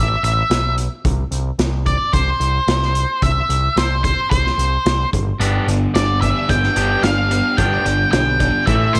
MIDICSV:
0, 0, Header, 1, 6, 480
1, 0, Start_track
1, 0, Tempo, 544959
1, 922, Time_signature, 4, 2, 24, 8
1, 7926, End_track
2, 0, Start_track
2, 0, Title_t, "Lead electric guitar"
2, 0, Program_c, 0, 29
2, 0, Note_on_c, 0, 76, 103
2, 203, Note_off_c, 0, 76, 0
2, 214, Note_on_c, 0, 76, 85
2, 654, Note_off_c, 0, 76, 0
2, 1642, Note_on_c, 0, 74, 77
2, 1863, Note_off_c, 0, 74, 0
2, 1877, Note_on_c, 0, 72, 82
2, 2843, Note_on_c, 0, 76, 92
2, 2865, Note_off_c, 0, 72, 0
2, 3326, Note_on_c, 0, 72, 77
2, 3334, Note_off_c, 0, 76, 0
2, 3551, Note_off_c, 0, 72, 0
2, 3562, Note_on_c, 0, 72, 75
2, 3782, Note_off_c, 0, 72, 0
2, 3792, Note_on_c, 0, 72, 73
2, 4480, Note_off_c, 0, 72, 0
2, 5237, Note_on_c, 0, 74, 90
2, 5467, Note_off_c, 0, 74, 0
2, 5471, Note_on_c, 0, 76, 85
2, 5722, Note_on_c, 0, 79, 105
2, 5723, Note_off_c, 0, 76, 0
2, 6192, Note_on_c, 0, 77, 91
2, 6217, Note_off_c, 0, 79, 0
2, 6670, Note_on_c, 0, 79, 87
2, 6692, Note_off_c, 0, 77, 0
2, 7138, Note_off_c, 0, 79, 0
2, 7149, Note_on_c, 0, 79, 92
2, 7627, Note_on_c, 0, 76, 93
2, 7652, Note_off_c, 0, 79, 0
2, 7866, Note_on_c, 0, 72, 82
2, 7884, Note_off_c, 0, 76, 0
2, 7926, Note_off_c, 0, 72, 0
2, 7926, End_track
3, 0, Start_track
3, 0, Title_t, "Overdriven electric guitar"
3, 0, Program_c, 1, 29
3, 4756, Note_on_c, 1, 59, 79
3, 4765, Note_on_c, 1, 62, 87
3, 4770, Note_on_c, 1, 67, 92
3, 4983, Note_off_c, 1, 59, 0
3, 4987, Note_off_c, 1, 62, 0
3, 4990, Note_off_c, 1, 67, 0
3, 5002, Note_on_c, 1, 59, 72
3, 5003, Note_on_c, 1, 62, 75
3, 5216, Note_off_c, 1, 59, 0
3, 5217, Note_off_c, 1, 62, 0
3, 5246, Note_on_c, 1, 59, 59
3, 5248, Note_on_c, 1, 62, 70
3, 5458, Note_off_c, 1, 59, 0
3, 5460, Note_off_c, 1, 62, 0
3, 5483, Note_on_c, 1, 59, 64
3, 5487, Note_on_c, 1, 62, 67
3, 5697, Note_off_c, 1, 59, 0
3, 5699, Note_off_c, 1, 62, 0
3, 5716, Note_on_c, 1, 59, 72
3, 5721, Note_on_c, 1, 62, 77
3, 5934, Note_off_c, 1, 59, 0
3, 5937, Note_off_c, 1, 62, 0
3, 5954, Note_on_c, 1, 59, 81
3, 5960, Note_on_c, 1, 62, 86
3, 5963, Note_on_c, 1, 67, 100
3, 6183, Note_off_c, 1, 59, 0
3, 6186, Note_off_c, 1, 62, 0
3, 6188, Note_off_c, 1, 67, 0
3, 6203, Note_on_c, 1, 59, 64
3, 6205, Note_on_c, 1, 62, 77
3, 6418, Note_off_c, 1, 59, 0
3, 6419, Note_off_c, 1, 62, 0
3, 6439, Note_on_c, 1, 59, 71
3, 6443, Note_on_c, 1, 62, 72
3, 6656, Note_off_c, 1, 59, 0
3, 6659, Note_off_c, 1, 62, 0
3, 6676, Note_on_c, 1, 59, 88
3, 6679, Note_on_c, 1, 62, 93
3, 6686, Note_on_c, 1, 67, 86
3, 6905, Note_off_c, 1, 59, 0
3, 6906, Note_off_c, 1, 62, 0
3, 6910, Note_off_c, 1, 67, 0
3, 6916, Note_on_c, 1, 59, 65
3, 6923, Note_on_c, 1, 62, 66
3, 7136, Note_off_c, 1, 59, 0
3, 7139, Note_off_c, 1, 62, 0
3, 7157, Note_on_c, 1, 59, 68
3, 7161, Note_on_c, 1, 62, 75
3, 7376, Note_off_c, 1, 59, 0
3, 7379, Note_off_c, 1, 62, 0
3, 7395, Note_on_c, 1, 59, 62
3, 7401, Note_on_c, 1, 62, 70
3, 7616, Note_off_c, 1, 59, 0
3, 7619, Note_off_c, 1, 62, 0
3, 7634, Note_on_c, 1, 52, 80
3, 7637, Note_on_c, 1, 57, 96
3, 7645, Note_on_c, 1, 64, 91
3, 7865, Note_off_c, 1, 52, 0
3, 7867, Note_off_c, 1, 57, 0
3, 7871, Note_off_c, 1, 64, 0
3, 7881, Note_on_c, 1, 52, 67
3, 7881, Note_on_c, 1, 57, 67
3, 7926, Note_off_c, 1, 52, 0
3, 7926, Note_off_c, 1, 57, 0
3, 7926, End_track
4, 0, Start_track
4, 0, Title_t, "Overdriven electric guitar"
4, 0, Program_c, 2, 29
4, 4757, Note_on_c, 2, 43, 68
4, 5000, Note_on_c, 2, 50, 63
4, 5242, Note_on_c, 2, 55, 64
4, 5479, Note_on_c, 2, 62, 70
4, 5721, Note_on_c, 2, 59, 65
4, 5951, Note_off_c, 2, 55, 0
4, 5960, Note_off_c, 2, 43, 0
4, 5961, Note_on_c, 2, 55, 64
4, 6186, Note_off_c, 2, 62, 0
4, 6197, Note_on_c, 2, 62, 69
4, 6202, Note_off_c, 2, 50, 0
4, 6437, Note_off_c, 2, 55, 0
4, 6447, Note_on_c, 2, 55, 62
4, 6678, Note_on_c, 2, 43, 64
4, 6916, Note_on_c, 2, 50, 65
4, 6923, Note_off_c, 2, 59, 0
4, 7145, Note_off_c, 2, 55, 0
4, 7156, Note_on_c, 2, 55, 62
4, 7384, Note_off_c, 2, 62, 0
4, 7394, Note_on_c, 2, 62, 72
4, 7639, Note_off_c, 2, 43, 0
4, 7640, Note_off_c, 2, 62, 0
4, 7641, Note_off_c, 2, 50, 0
4, 7641, Note_off_c, 2, 55, 0
4, 7642, Note_on_c, 2, 45, 69
4, 7889, Note_on_c, 2, 52, 64
4, 7926, Note_off_c, 2, 45, 0
4, 7926, Note_off_c, 2, 52, 0
4, 7926, End_track
5, 0, Start_track
5, 0, Title_t, "Picked electric bass"
5, 0, Program_c, 3, 34
5, 0, Note_on_c, 3, 33, 82
5, 128, Note_off_c, 3, 33, 0
5, 203, Note_on_c, 3, 33, 80
5, 366, Note_off_c, 3, 33, 0
5, 439, Note_on_c, 3, 35, 80
5, 764, Note_off_c, 3, 35, 0
5, 923, Note_on_c, 3, 36, 89
5, 1085, Note_off_c, 3, 36, 0
5, 1155, Note_on_c, 3, 36, 72
5, 1319, Note_off_c, 3, 36, 0
5, 1396, Note_on_c, 3, 36, 86
5, 1722, Note_off_c, 3, 36, 0
5, 1878, Note_on_c, 3, 36, 86
5, 2040, Note_off_c, 3, 36, 0
5, 2113, Note_on_c, 3, 36, 77
5, 2277, Note_off_c, 3, 36, 0
5, 2355, Note_on_c, 3, 36, 81
5, 2680, Note_off_c, 3, 36, 0
5, 2838, Note_on_c, 3, 36, 84
5, 3000, Note_off_c, 3, 36, 0
5, 3075, Note_on_c, 3, 36, 76
5, 3238, Note_off_c, 3, 36, 0
5, 3314, Note_on_c, 3, 36, 81
5, 3640, Note_off_c, 3, 36, 0
5, 3799, Note_on_c, 3, 36, 82
5, 3961, Note_off_c, 3, 36, 0
5, 4031, Note_on_c, 3, 36, 80
5, 4196, Note_off_c, 3, 36, 0
5, 4276, Note_on_c, 3, 36, 79
5, 4439, Note_off_c, 3, 36, 0
5, 4522, Note_on_c, 3, 31, 83
5, 4683, Note_off_c, 3, 31, 0
5, 4752, Note_on_c, 3, 31, 90
5, 4917, Note_off_c, 3, 31, 0
5, 4993, Note_on_c, 3, 31, 76
5, 5158, Note_off_c, 3, 31, 0
5, 5237, Note_on_c, 3, 31, 81
5, 5563, Note_off_c, 3, 31, 0
5, 5721, Note_on_c, 3, 31, 89
5, 5883, Note_off_c, 3, 31, 0
5, 5956, Note_on_c, 3, 31, 79
5, 6120, Note_off_c, 3, 31, 0
5, 6191, Note_on_c, 3, 31, 80
5, 6520, Note_off_c, 3, 31, 0
5, 6677, Note_on_c, 3, 31, 90
5, 6842, Note_off_c, 3, 31, 0
5, 6918, Note_on_c, 3, 31, 75
5, 7083, Note_off_c, 3, 31, 0
5, 7157, Note_on_c, 3, 35, 81
5, 7485, Note_off_c, 3, 35, 0
5, 7639, Note_on_c, 3, 33, 85
5, 7804, Note_off_c, 3, 33, 0
5, 7884, Note_on_c, 3, 33, 84
5, 7926, Note_off_c, 3, 33, 0
5, 7926, End_track
6, 0, Start_track
6, 0, Title_t, "Drums"
6, 211, Note_on_c, 9, 42, 62
6, 299, Note_off_c, 9, 42, 0
6, 447, Note_on_c, 9, 42, 80
6, 451, Note_on_c, 9, 38, 96
6, 535, Note_off_c, 9, 42, 0
6, 539, Note_off_c, 9, 38, 0
6, 685, Note_on_c, 9, 42, 62
6, 773, Note_off_c, 9, 42, 0
6, 924, Note_on_c, 9, 36, 97
6, 925, Note_on_c, 9, 42, 80
6, 1012, Note_off_c, 9, 36, 0
6, 1013, Note_off_c, 9, 42, 0
6, 1161, Note_on_c, 9, 42, 60
6, 1249, Note_off_c, 9, 42, 0
6, 1400, Note_on_c, 9, 42, 80
6, 1405, Note_on_c, 9, 38, 98
6, 1488, Note_off_c, 9, 42, 0
6, 1493, Note_off_c, 9, 38, 0
6, 1640, Note_on_c, 9, 36, 78
6, 1640, Note_on_c, 9, 42, 57
6, 1728, Note_off_c, 9, 36, 0
6, 1728, Note_off_c, 9, 42, 0
6, 1880, Note_on_c, 9, 36, 99
6, 1882, Note_on_c, 9, 42, 79
6, 1968, Note_off_c, 9, 36, 0
6, 1970, Note_off_c, 9, 42, 0
6, 2121, Note_on_c, 9, 42, 57
6, 2209, Note_off_c, 9, 42, 0
6, 2361, Note_on_c, 9, 42, 74
6, 2365, Note_on_c, 9, 38, 96
6, 2449, Note_off_c, 9, 42, 0
6, 2453, Note_off_c, 9, 38, 0
6, 2487, Note_on_c, 9, 38, 27
6, 2575, Note_off_c, 9, 38, 0
6, 2600, Note_on_c, 9, 42, 56
6, 2688, Note_off_c, 9, 42, 0
6, 2839, Note_on_c, 9, 36, 96
6, 2841, Note_on_c, 9, 42, 75
6, 2927, Note_off_c, 9, 36, 0
6, 2929, Note_off_c, 9, 42, 0
6, 3082, Note_on_c, 9, 42, 57
6, 3170, Note_off_c, 9, 42, 0
6, 3322, Note_on_c, 9, 42, 76
6, 3327, Note_on_c, 9, 38, 96
6, 3410, Note_off_c, 9, 42, 0
6, 3415, Note_off_c, 9, 38, 0
6, 3559, Note_on_c, 9, 36, 72
6, 3562, Note_on_c, 9, 42, 56
6, 3647, Note_off_c, 9, 36, 0
6, 3650, Note_off_c, 9, 42, 0
6, 3800, Note_on_c, 9, 36, 103
6, 3805, Note_on_c, 9, 42, 81
6, 3888, Note_off_c, 9, 36, 0
6, 3893, Note_off_c, 9, 42, 0
6, 3932, Note_on_c, 9, 38, 30
6, 4020, Note_off_c, 9, 38, 0
6, 4045, Note_on_c, 9, 42, 63
6, 4133, Note_off_c, 9, 42, 0
6, 4281, Note_on_c, 9, 42, 77
6, 4286, Note_on_c, 9, 38, 100
6, 4369, Note_off_c, 9, 42, 0
6, 4374, Note_off_c, 9, 38, 0
6, 4521, Note_on_c, 9, 36, 97
6, 4525, Note_on_c, 9, 42, 66
6, 4609, Note_off_c, 9, 36, 0
6, 4613, Note_off_c, 9, 42, 0
6, 4764, Note_on_c, 9, 42, 85
6, 4852, Note_off_c, 9, 42, 0
6, 5006, Note_on_c, 9, 42, 65
6, 5094, Note_off_c, 9, 42, 0
6, 5243, Note_on_c, 9, 42, 83
6, 5248, Note_on_c, 9, 38, 100
6, 5331, Note_off_c, 9, 42, 0
6, 5336, Note_off_c, 9, 38, 0
6, 5480, Note_on_c, 9, 36, 73
6, 5484, Note_on_c, 9, 42, 64
6, 5568, Note_off_c, 9, 36, 0
6, 5572, Note_off_c, 9, 42, 0
6, 5720, Note_on_c, 9, 36, 102
6, 5720, Note_on_c, 9, 42, 83
6, 5808, Note_off_c, 9, 36, 0
6, 5808, Note_off_c, 9, 42, 0
6, 5841, Note_on_c, 9, 38, 32
6, 5929, Note_off_c, 9, 38, 0
6, 5956, Note_on_c, 9, 42, 63
6, 6044, Note_off_c, 9, 42, 0
6, 6196, Note_on_c, 9, 42, 73
6, 6200, Note_on_c, 9, 38, 97
6, 6284, Note_off_c, 9, 42, 0
6, 6288, Note_off_c, 9, 38, 0
6, 6439, Note_on_c, 9, 42, 55
6, 6527, Note_off_c, 9, 42, 0
6, 6677, Note_on_c, 9, 42, 73
6, 6679, Note_on_c, 9, 36, 94
6, 6765, Note_off_c, 9, 42, 0
6, 6767, Note_off_c, 9, 36, 0
6, 6921, Note_on_c, 9, 42, 55
6, 7009, Note_off_c, 9, 42, 0
6, 7159, Note_on_c, 9, 42, 73
6, 7163, Note_on_c, 9, 38, 105
6, 7247, Note_off_c, 9, 42, 0
6, 7251, Note_off_c, 9, 38, 0
6, 7400, Note_on_c, 9, 42, 59
6, 7402, Note_on_c, 9, 36, 73
6, 7488, Note_off_c, 9, 42, 0
6, 7490, Note_off_c, 9, 36, 0
6, 7638, Note_on_c, 9, 42, 82
6, 7641, Note_on_c, 9, 36, 104
6, 7726, Note_off_c, 9, 42, 0
6, 7729, Note_off_c, 9, 36, 0
6, 7882, Note_on_c, 9, 42, 60
6, 7926, Note_off_c, 9, 42, 0
6, 7926, End_track
0, 0, End_of_file